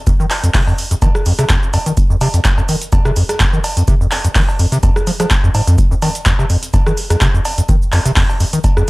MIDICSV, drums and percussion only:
0, 0, Header, 1, 2, 480
1, 0, Start_track
1, 0, Key_signature, -4, "minor"
1, 0, Tempo, 476190
1, 71, Time_signature, 4, 2, 24, 8
1, 8969, End_track
2, 0, Start_track
2, 0, Title_t, "Drums"
2, 70, Note_on_c, 9, 36, 117
2, 71, Note_on_c, 9, 42, 51
2, 71, Note_on_c, 9, 82, 88
2, 76, Note_off_c, 9, 82, 0
2, 76, Note_on_c, 9, 82, 52
2, 171, Note_off_c, 9, 36, 0
2, 172, Note_off_c, 9, 42, 0
2, 176, Note_off_c, 9, 82, 0
2, 204, Note_on_c, 9, 82, 32
2, 305, Note_off_c, 9, 82, 0
2, 307, Note_on_c, 9, 39, 64
2, 310, Note_on_c, 9, 46, 105
2, 310, Note_on_c, 9, 56, 58
2, 311, Note_on_c, 9, 82, 65
2, 408, Note_off_c, 9, 39, 0
2, 411, Note_off_c, 9, 46, 0
2, 411, Note_off_c, 9, 56, 0
2, 412, Note_off_c, 9, 82, 0
2, 439, Note_on_c, 9, 42, 65
2, 444, Note_on_c, 9, 82, 63
2, 540, Note_off_c, 9, 42, 0
2, 545, Note_off_c, 9, 82, 0
2, 547, Note_on_c, 9, 39, 118
2, 550, Note_on_c, 9, 36, 116
2, 550, Note_on_c, 9, 38, 107
2, 550, Note_on_c, 9, 42, 52
2, 550, Note_on_c, 9, 46, 80
2, 555, Note_on_c, 9, 82, 53
2, 648, Note_off_c, 9, 39, 0
2, 651, Note_off_c, 9, 36, 0
2, 651, Note_off_c, 9, 38, 0
2, 651, Note_off_c, 9, 42, 0
2, 651, Note_off_c, 9, 46, 0
2, 656, Note_off_c, 9, 82, 0
2, 679, Note_on_c, 9, 56, 39
2, 683, Note_on_c, 9, 82, 31
2, 780, Note_off_c, 9, 56, 0
2, 784, Note_off_c, 9, 82, 0
2, 789, Note_on_c, 9, 82, 67
2, 790, Note_on_c, 9, 46, 100
2, 890, Note_off_c, 9, 82, 0
2, 891, Note_off_c, 9, 46, 0
2, 918, Note_on_c, 9, 42, 64
2, 923, Note_on_c, 9, 82, 67
2, 1019, Note_off_c, 9, 42, 0
2, 1024, Note_off_c, 9, 82, 0
2, 1029, Note_on_c, 9, 42, 53
2, 1029, Note_on_c, 9, 56, 61
2, 1029, Note_on_c, 9, 82, 81
2, 1030, Note_on_c, 9, 36, 125
2, 1034, Note_off_c, 9, 82, 0
2, 1034, Note_on_c, 9, 82, 54
2, 1130, Note_off_c, 9, 36, 0
2, 1130, Note_off_c, 9, 42, 0
2, 1130, Note_off_c, 9, 56, 0
2, 1135, Note_off_c, 9, 82, 0
2, 1159, Note_on_c, 9, 37, 75
2, 1163, Note_on_c, 9, 82, 31
2, 1259, Note_off_c, 9, 37, 0
2, 1264, Note_off_c, 9, 82, 0
2, 1268, Note_on_c, 9, 82, 68
2, 1269, Note_on_c, 9, 46, 111
2, 1369, Note_off_c, 9, 82, 0
2, 1370, Note_off_c, 9, 46, 0
2, 1398, Note_on_c, 9, 37, 79
2, 1398, Note_on_c, 9, 42, 64
2, 1398, Note_on_c, 9, 56, 40
2, 1402, Note_on_c, 9, 82, 62
2, 1499, Note_off_c, 9, 37, 0
2, 1499, Note_off_c, 9, 42, 0
2, 1499, Note_off_c, 9, 56, 0
2, 1503, Note_off_c, 9, 82, 0
2, 1506, Note_on_c, 9, 39, 119
2, 1509, Note_on_c, 9, 38, 110
2, 1509, Note_on_c, 9, 42, 55
2, 1509, Note_on_c, 9, 82, 85
2, 1510, Note_on_c, 9, 36, 123
2, 1514, Note_off_c, 9, 82, 0
2, 1514, Note_on_c, 9, 82, 53
2, 1606, Note_off_c, 9, 39, 0
2, 1609, Note_off_c, 9, 38, 0
2, 1610, Note_off_c, 9, 36, 0
2, 1610, Note_off_c, 9, 42, 0
2, 1614, Note_off_c, 9, 82, 0
2, 1642, Note_on_c, 9, 82, 31
2, 1743, Note_off_c, 9, 82, 0
2, 1749, Note_on_c, 9, 82, 69
2, 1750, Note_on_c, 9, 46, 110
2, 1750, Note_on_c, 9, 56, 63
2, 1849, Note_off_c, 9, 82, 0
2, 1850, Note_off_c, 9, 46, 0
2, 1850, Note_off_c, 9, 56, 0
2, 1877, Note_on_c, 9, 42, 64
2, 1882, Note_on_c, 9, 82, 65
2, 1978, Note_off_c, 9, 42, 0
2, 1983, Note_off_c, 9, 82, 0
2, 1988, Note_on_c, 9, 82, 83
2, 1989, Note_on_c, 9, 36, 123
2, 1989, Note_on_c, 9, 42, 46
2, 1994, Note_off_c, 9, 82, 0
2, 1994, Note_on_c, 9, 82, 52
2, 2090, Note_off_c, 9, 36, 0
2, 2090, Note_off_c, 9, 42, 0
2, 2094, Note_off_c, 9, 82, 0
2, 2123, Note_on_c, 9, 82, 30
2, 2224, Note_off_c, 9, 82, 0
2, 2228, Note_on_c, 9, 82, 69
2, 2229, Note_on_c, 9, 46, 110
2, 2229, Note_on_c, 9, 56, 64
2, 2329, Note_off_c, 9, 82, 0
2, 2330, Note_off_c, 9, 46, 0
2, 2330, Note_off_c, 9, 56, 0
2, 2357, Note_on_c, 9, 42, 42
2, 2358, Note_off_c, 9, 42, 0
2, 2358, Note_on_c, 9, 42, 60
2, 2362, Note_on_c, 9, 82, 62
2, 2458, Note_off_c, 9, 42, 0
2, 2463, Note_off_c, 9, 82, 0
2, 2466, Note_on_c, 9, 39, 115
2, 2468, Note_on_c, 9, 38, 112
2, 2468, Note_on_c, 9, 82, 88
2, 2469, Note_on_c, 9, 36, 119
2, 2469, Note_on_c, 9, 42, 50
2, 2474, Note_off_c, 9, 82, 0
2, 2474, Note_on_c, 9, 82, 51
2, 2566, Note_off_c, 9, 39, 0
2, 2569, Note_off_c, 9, 38, 0
2, 2570, Note_off_c, 9, 36, 0
2, 2570, Note_off_c, 9, 42, 0
2, 2574, Note_off_c, 9, 82, 0
2, 2598, Note_on_c, 9, 56, 40
2, 2602, Note_on_c, 9, 82, 30
2, 2699, Note_off_c, 9, 56, 0
2, 2703, Note_off_c, 9, 82, 0
2, 2708, Note_on_c, 9, 82, 69
2, 2709, Note_on_c, 9, 46, 111
2, 2809, Note_off_c, 9, 82, 0
2, 2810, Note_off_c, 9, 46, 0
2, 2837, Note_on_c, 9, 42, 46
2, 2838, Note_off_c, 9, 42, 0
2, 2838, Note_on_c, 9, 42, 66
2, 2842, Note_on_c, 9, 82, 64
2, 2939, Note_off_c, 9, 42, 0
2, 2943, Note_off_c, 9, 82, 0
2, 2948, Note_on_c, 9, 82, 85
2, 2949, Note_on_c, 9, 42, 52
2, 2949, Note_on_c, 9, 56, 62
2, 2950, Note_on_c, 9, 36, 124
2, 2953, Note_off_c, 9, 82, 0
2, 2953, Note_on_c, 9, 82, 50
2, 3050, Note_off_c, 9, 36, 0
2, 3050, Note_off_c, 9, 42, 0
2, 3050, Note_off_c, 9, 56, 0
2, 3054, Note_off_c, 9, 82, 0
2, 3077, Note_on_c, 9, 37, 76
2, 3082, Note_on_c, 9, 82, 31
2, 3178, Note_off_c, 9, 37, 0
2, 3183, Note_off_c, 9, 82, 0
2, 3189, Note_on_c, 9, 46, 110
2, 3189, Note_on_c, 9, 82, 67
2, 3290, Note_off_c, 9, 46, 0
2, 3290, Note_off_c, 9, 82, 0
2, 3318, Note_on_c, 9, 37, 80
2, 3318, Note_on_c, 9, 42, 62
2, 3318, Note_on_c, 9, 56, 41
2, 3323, Note_on_c, 9, 82, 63
2, 3419, Note_off_c, 9, 37, 0
2, 3419, Note_off_c, 9, 42, 0
2, 3419, Note_off_c, 9, 56, 0
2, 3424, Note_off_c, 9, 82, 0
2, 3427, Note_on_c, 9, 39, 123
2, 3429, Note_on_c, 9, 38, 110
2, 3429, Note_on_c, 9, 82, 82
2, 3430, Note_on_c, 9, 36, 125
2, 3431, Note_on_c, 9, 42, 49
2, 3435, Note_off_c, 9, 82, 0
2, 3435, Note_on_c, 9, 82, 52
2, 3528, Note_off_c, 9, 39, 0
2, 3530, Note_off_c, 9, 38, 0
2, 3531, Note_off_c, 9, 36, 0
2, 3531, Note_off_c, 9, 42, 0
2, 3536, Note_off_c, 9, 82, 0
2, 3563, Note_on_c, 9, 82, 31
2, 3664, Note_off_c, 9, 82, 0
2, 3670, Note_on_c, 9, 46, 115
2, 3670, Note_on_c, 9, 56, 62
2, 3670, Note_on_c, 9, 82, 71
2, 3770, Note_off_c, 9, 46, 0
2, 3770, Note_off_c, 9, 56, 0
2, 3771, Note_off_c, 9, 82, 0
2, 3799, Note_on_c, 9, 42, 63
2, 3804, Note_on_c, 9, 82, 64
2, 3900, Note_off_c, 9, 42, 0
2, 3904, Note_off_c, 9, 82, 0
2, 3910, Note_on_c, 9, 36, 120
2, 3910, Note_on_c, 9, 82, 88
2, 3911, Note_on_c, 9, 42, 48
2, 3915, Note_off_c, 9, 82, 0
2, 3915, Note_on_c, 9, 82, 52
2, 4011, Note_off_c, 9, 36, 0
2, 4011, Note_off_c, 9, 42, 0
2, 4016, Note_off_c, 9, 82, 0
2, 4044, Note_on_c, 9, 82, 30
2, 4145, Note_off_c, 9, 82, 0
2, 4147, Note_on_c, 9, 39, 59
2, 4151, Note_on_c, 9, 46, 109
2, 4151, Note_on_c, 9, 56, 61
2, 4151, Note_on_c, 9, 82, 69
2, 4248, Note_off_c, 9, 39, 0
2, 4251, Note_off_c, 9, 82, 0
2, 4252, Note_off_c, 9, 46, 0
2, 4252, Note_off_c, 9, 56, 0
2, 4279, Note_on_c, 9, 42, 62
2, 4283, Note_on_c, 9, 82, 62
2, 4379, Note_off_c, 9, 42, 0
2, 4384, Note_off_c, 9, 82, 0
2, 4387, Note_on_c, 9, 39, 109
2, 4390, Note_on_c, 9, 36, 123
2, 4390, Note_on_c, 9, 38, 114
2, 4390, Note_on_c, 9, 46, 77
2, 4391, Note_on_c, 9, 42, 49
2, 4395, Note_on_c, 9, 82, 54
2, 4488, Note_off_c, 9, 39, 0
2, 4491, Note_off_c, 9, 36, 0
2, 4491, Note_off_c, 9, 38, 0
2, 4491, Note_off_c, 9, 46, 0
2, 4492, Note_off_c, 9, 42, 0
2, 4496, Note_off_c, 9, 82, 0
2, 4520, Note_on_c, 9, 56, 39
2, 4525, Note_on_c, 9, 82, 31
2, 4621, Note_off_c, 9, 56, 0
2, 4626, Note_off_c, 9, 82, 0
2, 4631, Note_on_c, 9, 46, 106
2, 4631, Note_on_c, 9, 82, 69
2, 4731, Note_off_c, 9, 82, 0
2, 4732, Note_off_c, 9, 46, 0
2, 4759, Note_on_c, 9, 42, 62
2, 4764, Note_on_c, 9, 82, 66
2, 4860, Note_off_c, 9, 42, 0
2, 4865, Note_off_c, 9, 82, 0
2, 4871, Note_on_c, 9, 36, 119
2, 4871, Note_on_c, 9, 42, 49
2, 4871, Note_on_c, 9, 56, 57
2, 4871, Note_on_c, 9, 82, 83
2, 4875, Note_off_c, 9, 82, 0
2, 4875, Note_on_c, 9, 82, 50
2, 4971, Note_off_c, 9, 36, 0
2, 4972, Note_off_c, 9, 42, 0
2, 4972, Note_off_c, 9, 56, 0
2, 4976, Note_off_c, 9, 82, 0
2, 5000, Note_on_c, 9, 37, 77
2, 5005, Note_on_c, 9, 82, 34
2, 5101, Note_off_c, 9, 37, 0
2, 5106, Note_off_c, 9, 82, 0
2, 5110, Note_on_c, 9, 82, 67
2, 5111, Note_on_c, 9, 46, 106
2, 5211, Note_off_c, 9, 82, 0
2, 5212, Note_off_c, 9, 46, 0
2, 5239, Note_on_c, 9, 42, 44
2, 5240, Note_off_c, 9, 42, 0
2, 5240, Note_on_c, 9, 37, 85
2, 5240, Note_on_c, 9, 42, 59
2, 5240, Note_on_c, 9, 56, 40
2, 5244, Note_on_c, 9, 82, 63
2, 5341, Note_off_c, 9, 37, 0
2, 5341, Note_off_c, 9, 42, 0
2, 5341, Note_off_c, 9, 56, 0
2, 5345, Note_off_c, 9, 82, 0
2, 5348, Note_on_c, 9, 39, 111
2, 5350, Note_on_c, 9, 38, 113
2, 5350, Note_on_c, 9, 82, 82
2, 5351, Note_on_c, 9, 36, 119
2, 5351, Note_on_c, 9, 42, 50
2, 5356, Note_off_c, 9, 82, 0
2, 5356, Note_on_c, 9, 82, 50
2, 5449, Note_off_c, 9, 39, 0
2, 5451, Note_off_c, 9, 38, 0
2, 5452, Note_off_c, 9, 36, 0
2, 5452, Note_off_c, 9, 42, 0
2, 5457, Note_off_c, 9, 82, 0
2, 5484, Note_on_c, 9, 82, 33
2, 5585, Note_off_c, 9, 82, 0
2, 5590, Note_on_c, 9, 82, 66
2, 5591, Note_on_c, 9, 46, 112
2, 5591, Note_on_c, 9, 56, 64
2, 5691, Note_off_c, 9, 46, 0
2, 5691, Note_off_c, 9, 56, 0
2, 5691, Note_off_c, 9, 82, 0
2, 5720, Note_on_c, 9, 42, 61
2, 5724, Note_on_c, 9, 82, 65
2, 5821, Note_off_c, 9, 42, 0
2, 5825, Note_off_c, 9, 82, 0
2, 5830, Note_on_c, 9, 82, 87
2, 5831, Note_on_c, 9, 36, 121
2, 5831, Note_on_c, 9, 42, 46
2, 5836, Note_off_c, 9, 82, 0
2, 5836, Note_on_c, 9, 82, 51
2, 5932, Note_off_c, 9, 36, 0
2, 5932, Note_off_c, 9, 42, 0
2, 5936, Note_off_c, 9, 82, 0
2, 5965, Note_on_c, 9, 82, 32
2, 6066, Note_off_c, 9, 82, 0
2, 6070, Note_on_c, 9, 82, 70
2, 6071, Note_on_c, 9, 46, 106
2, 6071, Note_on_c, 9, 56, 61
2, 6171, Note_off_c, 9, 82, 0
2, 6172, Note_off_c, 9, 46, 0
2, 6172, Note_off_c, 9, 56, 0
2, 6200, Note_on_c, 9, 42, 64
2, 6204, Note_on_c, 9, 82, 67
2, 6301, Note_off_c, 9, 42, 0
2, 6305, Note_off_c, 9, 82, 0
2, 6307, Note_on_c, 9, 39, 111
2, 6310, Note_on_c, 9, 38, 116
2, 6310, Note_on_c, 9, 82, 86
2, 6311, Note_on_c, 9, 36, 113
2, 6311, Note_on_c, 9, 42, 49
2, 6315, Note_off_c, 9, 82, 0
2, 6315, Note_on_c, 9, 82, 55
2, 6408, Note_off_c, 9, 39, 0
2, 6411, Note_off_c, 9, 38, 0
2, 6412, Note_off_c, 9, 36, 0
2, 6412, Note_off_c, 9, 42, 0
2, 6416, Note_off_c, 9, 82, 0
2, 6440, Note_on_c, 9, 56, 39
2, 6444, Note_on_c, 9, 82, 32
2, 6541, Note_off_c, 9, 56, 0
2, 6545, Note_off_c, 9, 82, 0
2, 6550, Note_on_c, 9, 46, 101
2, 6551, Note_on_c, 9, 82, 69
2, 6651, Note_off_c, 9, 46, 0
2, 6651, Note_off_c, 9, 82, 0
2, 6679, Note_on_c, 9, 42, 66
2, 6680, Note_off_c, 9, 42, 0
2, 6680, Note_on_c, 9, 42, 45
2, 6684, Note_on_c, 9, 82, 70
2, 6781, Note_off_c, 9, 42, 0
2, 6785, Note_off_c, 9, 82, 0
2, 6791, Note_on_c, 9, 36, 123
2, 6791, Note_on_c, 9, 42, 51
2, 6791, Note_on_c, 9, 56, 57
2, 6791, Note_on_c, 9, 82, 80
2, 6795, Note_off_c, 9, 82, 0
2, 6795, Note_on_c, 9, 82, 52
2, 6891, Note_off_c, 9, 42, 0
2, 6891, Note_off_c, 9, 56, 0
2, 6892, Note_off_c, 9, 36, 0
2, 6896, Note_off_c, 9, 82, 0
2, 6920, Note_on_c, 9, 37, 82
2, 6924, Note_on_c, 9, 82, 33
2, 7020, Note_off_c, 9, 37, 0
2, 7025, Note_off_c, 9, 82, 0
2, 7030, Note_on_c, 9, 46, 106
2, 7030, Note_on_c, 9, 82, 66
2, 7131, Note_off_c, 9, 46, 0
2, 7131, Note_off_c, 9, 82, 0
2, 7160, Note_on_c, 9, 37, 83
2, 7160, Note_on_c, 9, 42, 64
2, 7160, Note_on_c, 9, 56, 37
2, 7165, Note_on_c, 9, 82, 66
2, 7261, Note_off_c, 9, 37, 0
2, 7261, Note_off_c, 9, 42, 0
2, 7261, Note_off_c, 9, 56, 0
2, 7266, Note_off_c, 9, 82, 0
2, 7267, Note_on_c, 9, 39, 108
2, 7271, Note_on_c, 9, 36, 119
2, 7271, Note_on_c, 9, 38, 116
2, 7271, Note_on_c, 9, 42, 47
2, 7271, Note_on_c, 9, 82, 88
2, 7275, Note_off_c, 9, 82, 0
2, 7275, Note_on_c, 9, 82, 55
2, 7368, Note_off_c, 9, 39, 0
2, 7372, Note_off_c, 9, 36, 0
2, 7372, Note_off_c, 9, 38, 0
2, 7372, Note_off_c, 9, 42, 0
2, 7376, Note_off_c, 9, 82, 0
2, 7404, Note_on_c, 9, 82, 33
2, 7505, Note_off_c, 9, 82, 0
2, 7511, Note_on_c, 9, 46, 105
2, 7511, Note_on_c, 9, 56, 61
2, 7511, Note_on_c, 9, 82, 72
2, 7612, Note_off_c, 9, 46, 0
2, 7612, Note_off_c, 9, 56, 0
2, 7612, Note_off_c, 9, 82, 0
2, 7640, Note_on_c, 9, 42, 65
2, 7644, Note_on_c, 9, 82, 67
2, 7741, Note_off_c, 9, 42, 0
2, 7745, Note_off_c, 9, 82, 0
2, 7751, Note_on_c, 9, 36, 119
2, 7751, Note_on_c, 9, 82, 89
2, 7752, Note_on_c, 9, 42, 50
2, 7756, Note_off_c, 9, 82, 0
2, 7756, Note_on_c, 9, 82, 53
2, 7851, Note_off_c, 9, 36, 0
2, 7853, Note_off_c, 9, 42, 0
2, 7857, Note_off_c, 9, 82, 0
2, 7884, Note_on_c, 9, 82, 33
2, 7985, Note_off_c, 9, 82, 0
2, 7987, Note_on_c, 9, 39, 58
2, 7991, Note_on_c, 9, 46, 98
2, 7991, Note_on_c, 9, 56, 58
2, 7991, Note_on_c, 9, 82, 70
2, 8088, Note_off_c, 9, 39, 0
2, 8092, Note_off_c, 9, 46, 0
2, 8092, Note_off_c, 9, 56, 0
2, 8092, Note_off_c, 9, 82, 0
2, 8120, Note_on_c, 9, 42, 61
2, 8124, Note_on_c, 9, 82, 71
2, 8221, Note_off_c, 9, 42, 0
2, 8225, Note_off_c, 9, 82, 0
2, 8227, Note_on_c, 9, 39, 115
2, 8231, Note_on_c, 9, 36, 113
2, 8231, Note_on_c, 9, 38, 112
2, 8231, Note_on_c, 9, 42, 49
2, 8231, Note_on_c, 9, 46, 79
2, 8235, Note_on_c, 9, 82, 57
2, 8328, Note_off_c, 9, 39, 0
2, 8331, Note_off_c, 9, 38, 0
2, 8331, Note_off_c, 9, 46, 0
2, 8332, Note_off_c, 9, 36, 0
2, 8332, Note_off_c, 9, 42, 0
2, 8336, Note_off_c, 9, 82, 0
2, 8360, Note_on_c, 9, 56, 36
2, 8364, Note_on_c, 9, 82, 35
2, 8461, Note_off_c, 9, 56, 0
2, 8465, Note_off_c, 9, 82, 0
2, 8471, Note_on_c, 9, 46, 95
2, 8471, Note_on_c, 9, 82, 68
2, 8571, Note_off_c, 9, 82, 0
2, 8572, Note_off_c, 9, 46, 0
2, 8599, Note_on_c, 9, 42, 66
2, 8604, Note_on_c, 9, 82, 69
2, 8700, Note_off_c, 9, 42, 0
2, 8704, Note_off_c, 9, 82, 0
2, 8710, Note_on_c, 9, 82, 82
2, 8711, Note_on_c, 9, 36, 113
2, 8711, Note_on_c, 9, 42, 50
2, 8711, Note_on_c, 9, 56, 56
2, 8715, Note_off_c, 9, 82, 0
2, 8715, Note_on_c, 9, 82, 58
2, 8811, Note_off_c, 9, 42, 0
2, 8811, Note_off_c, 9, 56, 0
2, 8812, Note_off_c, 9, 36, 0
2, 8816, Note_off_c, 9, 82, 0
2, 8839, Note_on_c, 9, 37, 79
2, 8843, Note_on_c, 9, 82, 36
2, 8940, Note_off_c, 9, 37, 0
2, 8944, Note_off_c, 9, 82, 0
2, 8969, End_track
0, 0, End_of_file